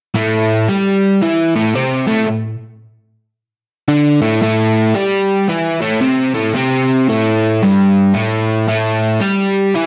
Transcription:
overdriven electric guitar
0.14 A2 A3
0.69 G3 G4
1.22 E3 E4
1.56 A2 A3
1.75 C3 C4
2.07 A2 A3
2.28 A2
3.88 D3 D4
4.22 A2 A3
4.42 A2 A3
4.95 G3 G4
5.48 E3 E4
5.81 A2 A3
6.01 C3 C4
6.35 A2 A3
6.54 C3 C4
7.08 A2 A3
7.63 G2 G3
8.14 A2 A3
8.68 A2 A3
9.20 G3 G4
9.74 E3 E4

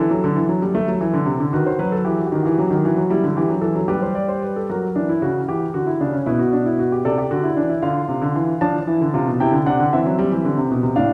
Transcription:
grand piano
Already playing: E4
0.00 E3 A4
0.11 F#3
0.24 D3
0.36 E3
0.49 F#3
0.62 G3
0.75 A3
0.88 F#3
1.01 E3
1.13 D3
1.26 C3
1.40 D3
1.53 D#3 F#4 B4
1.66 C5
1.79 F#3 B4
1.92 A4
2.05 E3 G4
2.18 F#4
2.26 G4
2.32 D#3 F#4
2.43 E3 G4
2.52 F#4
2.59 F#3 G4
2.67 F#4
2.71 D#3
2.75 G4
2.83 E3 F#4
2.97 F#3
3.10 G3 E4
3.23 D3
3.37 E3 G4
3.49 F#3
3.61 E3 A4
3.75 F#3
3.88 G3 G4 B4
4.02 C5
4.15 D5
4.28 C5
4.42 B4
4.56 A4
4.69 F#3 F#4 A#4
4.95 E3 D4
5.09 E4
5.22 C#3 F#4
5.48 E3 G4
5.74 D3 F#4
5.87 E4
6.00 C#3 D4
6.13 C#4
6.26 B2 E4 B4
6.39 F#4
6.53 D4
6.66 E4
6.79 F#4
6.92 G4
7.05 C3 A4 D5
7.18 G4
7.31 D3 F#4
7.44 E4
7.57 E3 D4
7.69 E4
7.82 D3 F4 F5
8.09 C3
8.21 D3
8.35 E3
8.61 F3 D4 A5
8.87 E3 E4
9.01 D3
9.14 C3 F4
9.27 B2
9.40 C3 E4 G5
9.52 D3
9.66 C3 D4 F#5
9.80 D3
9.93 E3 C4 E5
10.06 F#3
10.19 G3
10.32 E3
10.45 D3
10.58 C3
10.71 B2
10.83 C3
10.96 A2 D4 F5

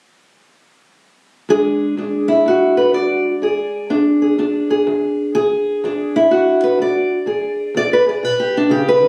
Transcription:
steel-string acoustic guitar
1.49 E2 G#3 D4 G#4
1.97 E2 D4
2.28 E4
2.46 E2 F#4
2.77 B4
2.93 E2 D5
3.42 E2 G#4
3.90 E2 D4
4.22 G#4
4.38 E2 D4
4.70 G#4
4.87 E2
5.35 E2 G#4
5.84 E2 D4
6.16 E4
6.31 E2 F#4
6.64 B4
6.79 E2 D5
7.26 E2 G#4
7.75 E2 D5
7.93 B4
8.06 G#4 D5
8.23 B2 B4
8.40 G4
8.57 D4
8.69 C#3 G4
8.88 B4
9.01 D#3

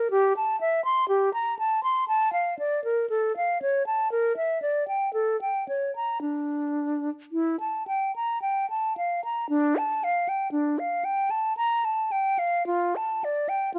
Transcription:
flute
0.11 G4
0.37 A5
0.61 E5
0.85 C6
1.08 G4
1.34 A#5
1.59 A5
1.83 C6
2.08 A5
2.33 F5
2.59 D5
2.84 A#4
3.10 A4
3.37 F5
3.62 C#5
3.87 A5
4.12 A#4
4.37 E5
4.62 D5
4.88 G5
5.14 A4
5.41 G5
5.69 C#5
5.96 A#5
6.21 D4
7.32 E4
7.60 A5
7.88 G5
8.16 A#5
8.42 G5
8.70 A5
8.97 F5
9.24 A#5
9.49 D4
9.77 A5
10.04 F5
10.29 G5
10.52 D4
10.79 F5
11.05 G5
11.31 A5
11.57 A#5
11.85 A5
12.12 G5
12.39 F5
12.67 F4
12.96 A5
13.24 D5
13.49 G5
13.74 F4

